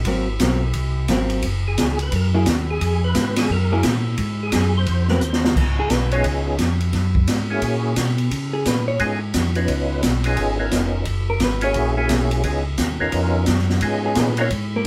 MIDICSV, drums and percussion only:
0, 0, Header, 1, 2, 480
1, 0, Start_track
1, 0, Tempo, 344037
1, 88, Time_signature, 4, 2, 24, 8
1, 20745, End_track
2, 0, Start_track
2, 0, Title_t, "Drums"
2, 68, Note_on_c, 9, 51, 62
2, 72, Note_on_c, 9, 36, 23
2, 208, Note_off_c, 9, 51, 0
2, 211, Note_off_c, 9, 36, 0
2, 553, Note_on_c, 9, 44, 63
2, 553, Note_on_c, 9, 51, 76
2, 555, Note_on_c, 9, 36, 22
2, 560, Note_on_c, 9, 38, 74
2, 693, Note_off_c, 9, 44, 0
2, 693, Note_off_c, 9, 51, 0
2, 694, Note_off_c, 9, 36, 0
2, 700, Note_off_c, 9, 38, 0
2, 1025, Note_on_c, 9, 51, 60
2, 1035, Note_on_c, 9, 36, 24
2, 1165, Note_off_c, 9, 51, 0
2, 1174, Note_off_c, 9, 36, 0
2, 1510, Note_on_c, 9, 44, 53
2, 1510, Note_on_c, 9, 51, 63
2, 1517, Note_on_c, 9, 36, 20
2, 1517, Note_on_c, 9, 38, 66
2, 1649, Note_off_c, 9, 44, 0
2, 1649, Note_off_c, 9, 51, 0
2, 1656, Note_off_c, 9, 38, 0
2, 1657, Note_off_c, 9, 36, 0
2, 1810, Note_on_c, 9, 51, 50
2, 1949, Note_off_c, 9, 51, 0
2, 1988, Note_on_c, 9, 51, 64
2, 1999, Note_on_c, 9, 36, 22
2, 2127, Note_off_c, 9, 51, 0
2, 2139, Note_off_c, 9, 36, 0
2, 2479, Note_on_c, 9, 44, 53
2, 2479, Note_on_c, 9, 51, 76
2, 2482, Note_on_c, 9, 36, 25
2, 2486, Note_on_c, 9, 38, 67
2, 2618, Note_off_c, 9, 44, 0
2, 2618, Note_off_c, 9, 51, 0
2, 2621, Note_off_c, 9, 36, 0
2, 2625, Note_off_c, 9, 38, 0
2, 2776, Note_on_c, 9, 51, 54
2, 2916, Note_off_c, 9, 51, 0
2, 2956, Note_on_c, 9, 51, 64
2, 2961, Note_on_c, 9, 36, 28
2, 3096, Note_off_c, 9, 51, 0
2, 3100, Note_off_c, 9, 36, 0
2, 3432, Note_on_c, 9, 44, 58
2, 3432, Note_on_c, 9, 51, 63
2, 3439, Note_on_c, 9, 38, 70
2, 3441, Note_on_c, 9, 36, 20
2, 3571, Note_off_c, 9, 44, 0
2, 3571, Note_off_c, 9, 51, 0
2, 3578, Note_off_c, 9, 38, 0
2, 3580, Note_off_c, 9, 36, 0
2, 3923, Note_on_c, 9, 36, 17
2, 3923, Note_on_c, 9, 51, 63
2, 4062, Note_off_c, 9, 36, 0
2, 4063, Note_off_c, 9, 51, 0
2, 4392, Note_on_c, 9, 44, 54
2, 4392, Note_on_c, 9, 51, 69
2, 4399, Note_on_c, 9, 38, 66
2, 4401, Note_on_c, 9, 36, 20
2, 4531, Note_off_c, 9, 44, 0
2, 4531, Note_off_c, 9, 51, 0
2, 4538, Note_off_c, 9, 38, 0
2, 4541, Note_off_c, 9, 36, 0
2, 4693, Note_on_c, 9, 51, 84
2, 4700, Note_on_c, 9, 38, 67
2, 4832, Note_off_c, 9, 51, 0
2, 4839, Note_off_c, 9, 38, 0
2, 4880, Note_on_c, 9, 36, 21
2, 5020, Note_off_c, 9, 36, 0
2, 5345, Note_on_c, 9, 44, 57
2, 5345, Note_on_c, 9, 51, 75
2, 5352, Note_on_c, 9, 38, 69
2, 5358, Note_on_c, 9, 36, 17
2, 5485, Note_off_c, 9, 44, 0
2, 5485, Note_off_c, 9, 51, 0
2, 5492, Note_off_c, 9, 38, 0
2, 5498, Note_off_c, 9, 36, 0
2, 5827, Note_on_c, 9, 51, 59
2, 5840, Note_on_c, 9, 36, 21
2, 5966, Note_off_c, 9, 51, 0
2, 5979, Note_off_c, 9, 36, 0
2, 6305, Note_on_c, 9, 44, 50
2, 6305, Note_on_c, 9, 51, 82
2, 6312, Note_on_c, 9, 38, 66
2, 6318, Note_on_c, 9, 36, 19
2, 6445, Note_off_c, 9, 44, 0
2, 6445, Note_off_c, 9, 51, 0
2, 6452, Note_off_c, 9, 38, 0
2, 6458, Note_off_c, 9, 36, 0
2, 6788, Note_on_c, 9, 51, 59
2, 6798, Note_on_c, 9, 36, 19
2, 6927, Note_off_c, 9, 51, 0
2, 6937, Note_off_c, 9, 36, 0
2, 7092, Note_on_c, 9, 38, 34
2, 7231, Note_off_c, 9, 38, 0
2, 7269, Note_on_c, 9, 44, 60
2, 7409, Note_off_c, 9, 44, 0
2, 7437, Note_on_c, 9, 38, 62
2, 7577, Note_off_c, 9, 38, 0
2, 7599, Note_on_c, 9, 38, 95
2, 7739, Note_off_c, 9, 38, 0
2, 7760, Note_on_c, 9, 36, 62
2, 7766, Note_on_c, 9, 49, 64
2, 7899, Note_off_c, 9, 36, 0
2, 7905, Note_off_c, 9, 49, 0
2, 8230, Note_on_c, 9, 44, 47
2, 8230, Note_on_c, 9, 51, 56
2, 8237, Note_on_c, 9, 36, 18
2, 8237, Note_on_c, 9, 38, 63
2, 8369, Note_off_c, 9, 44, 0
2, 8369, Note_off_c, 9, 51, 0
2, 8376, Note_off_c, 9, 36, 0
2, 8376, Note_off_c, 9, 38, 0
2, 8531, Note_on_c, 9, 51, 47
2, 8671, Note_off_c, 9, 51, 0
2, 8707, Note_on_c, 9, 51, 61
2, 8715, Note_on_c, 9, 36, 19
2, 8846, Note_off_c, 9, 51, 0
2, 8855, Note_off_c, 9, 36, 0
2, 9188, Note_on_c, 9, 44, 51
2, 9188, Note_on_c, 9, 51, 57
2, 9194, Note_on_c, 9, 36, 15
2, 9195, Note_on_c, 9, 38, 61
2, 9327, Note_off_c, 9, 44, 0
2, 9327, Note_off_c, 9, 51, 0
2, 9333, Note_off_c, 9, 36, 0
2, 9334, Note_off_c, 9, 38, 0
2, 9495, Note_on_c, 9, 51, 45
2, 9634, Note_off_c, 9, 51, 0
2, 9668, Note_on_c, 9, 51, 53
2, 9674, Note_on_c, 9, 36, 22
2, 9675, Note_on_c, 9, 38, 33
2, 9808, Note_off_c, 9, 51, 0
2, 9813, Note_off_c, 9, 36, 0
2, 9815, Note_off_c, 9, 38, 0
2, 9975, Note_on_c, 9, 36, 51
2, 10115, Note_off_c, 9, 36, 0
2, 10150, Note_on_c, 9, 44, 47
2, 10150, Note_on_c, 9, 51, 68
2, 10155, Note_on_c, 9, 36, 23
2, 10157, Note_on_c, 9, 38, 58
2, 10290, Note_off_c, 9, 44, 0
2, 10290, Note_off_c, 9, 51, 0
2, 10295, Note_off_c, 9, 36, 0
2, 10297, Note_off_c, 9, 38, 0
2, 10629, Note_on_c, 9, 51, 64
2, 10633, Note_on_c, 9, 36, 21
2, 10768, Note_off_c, 9, 51, 0
2, 10772, Note_off_c, 9, 36, 0
2, 11109, Note_on_c, 9, 44, 47
2, 11109, Note_on_c, 9, 51, 67
2, 11116, Note_on_c, 9, 36, 18
2, 11116, Note_on_c, 9, 38, 67
2, 11249, Note_off_c, 9, 44, 0
2, 11249, Note_off_c, 9, 51, 0
2, 11255, Note_off_c, 9, 36, 0
2, 11255, Note_off_c, 9, 38, 0
2, 11416, Note_on_c, 9, 51, 45
2, 11555, Note_off_c, 9, 51, 0
2, 11598, Note_on_c, 9, 36, 16
2, 11599, Note_on_c, 9, 51, 65
2, 11738, Note_off_c, 9, 36, 0
2, 11738, Note_off_c, 9, 51, 0
2, 12076, Note_on_c, 9, 44, 57
2, 12076, Note_on_c, 9, 51, 58
2, 12078, Note_on_c, 9, 36, 19
2, 12083, Note_on_c, 9, 38, 66
2, 12216, Note_off_c, 9, 44, 0
2, 12216, Note_off_c, 9, 51, 0
2, 12218, Note_off_c, 9, 36, 0
2, 12223, Note_off_c, 9, 38, 0
2, 12550, Note_on_c, 9, 51, 57
2, 12559, Note_on_c, 9, 36, 19
2, 12690, Note_off_c, 9, 51, 0
2, 12698, Note_off_c, 9, 36, 0
2, 13028, Note_on_c, 9, 44, 58
2, 13028, Note_on_c, 9, 51, 67
2, 13035, Note_on_c, 9, 38, 59
2, 13039, Note_on_c, 9, 36, 24
2, 13168, Note_off_c, 9, 44, 0
2, 13168, Note_off_c, 9, 51, 0
2, 13175, Note_off_c, 9, 38, 0
2, 13178, Note_off_c, 9, 36, 0
2, 13329, Note_on_c, 9, 51, 45
2, 13468, Note_off_c, 9, 51, 0
2, 13506, Note_on_c, 9, 51, 61
2, 13518, Note_on_c, 9, 36, 19
2, 13645, Note_off_c, 9, 51, 0
2, 13657, Note_off_c, 9, 36, 0
2, 13990, Note_on_c, 9, 44, 58
2, 13990, Note_on_c, 9, 51, 64
2, 13996, Note_on_c, 9, 38, 66
2, 13998, Note_on_c, 9, 36, 26
2, 14129, Note_off_c, 9, 44, 0
2, 14129, Note_off_c, 9, 51, 0
2, 14136, Note_off_c, 9, 38, 0
2, 14138, Note_off_c, 9, 36, 0
2, 14286, Note_on_c, 9, 51, 51
2, 14425, Note_off_c, 9, 51, 0
2, 14465, Note_on_c, 9, 51, 57
2, 14475, Note_on_c, 9, 36, 19
2, 14605, Note_off_c, 9, 51, 0
2, 14615, Note_off_c, 9, 36, 0
2, 14950, Note_on_c, 9, 44, 56
2, 14950, Note_on_c, 9, 51, 54
2, 14956, Note_on_c, 9, 36, 18
2, 14957, Note_on_c, 9, 38, 58
2, 15089, Note_off_c, 9, 44, 0
2, 15089, Note_off_c, 9, 51, 0
2, 15095, Note_off_c, 9, 36, 0
2, 15096, Note_off_c, 9, 38, 0
2, 15422, Note_on_c, 9, 51, 58
2, 15433, Note_on_c, 9, 36, 21
2, 15562, Note_off_c, 9, 51, 0
2, 15573, Note_off_c, 9, 36, 0
2, 15903, Note_on_c, 9, 44, 51
2, 15903, Note_on_c, 9, 51, 60
2, 15910, Note_on_c, 9, 38, 67
2, 15912, Note_on_c, 9, 36, 26
2, 16043, Note_off_c, 9, 44, 0
2, 16043, Note_off_c, 9, 51, 0
2, 16050, Note_off_c, 9, 38, 0
2, 16052, Note_off_c, 9, 36, 0
2, 16201, Note_on_c, 9, 51, 53
2, 16340, Note_off_c, 9, 51, 0
2, 16382, Note_on_c, 9, 51, 56
2, 16393, Note_on_c, 9, 36, 22
2, 16522, Note_off_c, 9, 51, 0
2, 16533, Note_off_c, 9, 36, 0
2, 16869, Note_on_c, 9, 44, 50
2, 16869, Note_on_c, 9, 51, 66
2, 16875, Note_on_c, 9, 36, 22
2, 16875, Note_on_c, 9, 38, 63
2, 17008, Note_off_c, 9, 44, 0
2, 17008, Note_off_c, 9, 51, 0
2, 17015, Note_off_c, 9, 36, 0
2, 17015, Note_off_c, 9, 38, 0
2, 17176, Note_on_c, 9, 51, 51
2, 17315, Note_off_c, 9, 51, 0
2, 17350, Note_on_c, 9, 51, 56
2, 17355, Note_on_c, 9, 36, 26
2, 17489, Note_off_c, 9, 51, 0
2, 17495, Note_off_c, 9, 36, 0
2, 17827, Note_on_c, 9, 44, 51
2, 17827, Note_on_c, 9, 51, 60
2, 17834, Note_on_c, 9, 38, 62
2, 17837, Note_on_c, 9, 36, 23
2, 17966, Note_off_c, 9, 44, 0
2, 17966, Note_off_c, 9, 51, 0
2, 17973, Note_off_c, 9, 38, 0
2, 17976, Note_off_c, 9, 36, 0
2, 18306, Note_on_c, 9, 51, 59
2, 18316, Note_on_c, 9, 36, 20
2, 18446, Note_off_c, 9, 51, 0
2, 18455, Note_off_c, 9, 36, 0
2, 18781, Note_on_c, 9, 44, 49
2, 18781, Note_on_c, 9, 51, 62
2, 18788, Note_on_c, 9, 38, 67
2, 18796, Note_on_c, 9, 36, 22
2, 18921, Note_off_c, 9, 44, 0
2, 18921, Note_off_c, 9, 51, 0
2, 18928, Note_off_c, 9, 38, 0
2, 18936, Note_off_c, 9, 36, 0
2, 18955, Note_on_c, 9, 38, 30
2, 19095, Note_off_c, 9, 38, 0
2, 19111, Note_on_c, 9, 38, 48
2, 19250, Note_off_c, 9, 38, 0
2, 19264, Note_on_c, 9, 51, 60
2, 19276, Note_on_c, 9, 36, 20
2, 19403, Note_off_c, 9, 51, 0
2, 19415, Note_off_c, 9, 36, 0
2, 19746, Note_on_c, 9, 44, 49
2, 19746, Note_on_c, 9, 51, 67
2, 19753, Note_on_c, 9, 38, 67
2, 19757, Note_on_c, 9, 36, 20
2, 19886, Note_off_c, 9, 44, 0
2, 19886, Note_off_c, 9, 51, 0
2, 19893, Note_off_c, 9, 38, 0
2, 19897, Note_off_c, 9, 36, 0
2, 20049, Note_on_c, 9, 51, 55
2, 20188, Note_off_c, 9, 51, 0
2, 20238, Note_on_c, 9, 51, 57
2, 20241, Note_on_c, 9, 36, 24
2, 20377, Note_off_c, 9, 51, 0
2, 20381, Note_off_c, 9, 36, 0
2, 20745, End_track
0, 0, End_of_file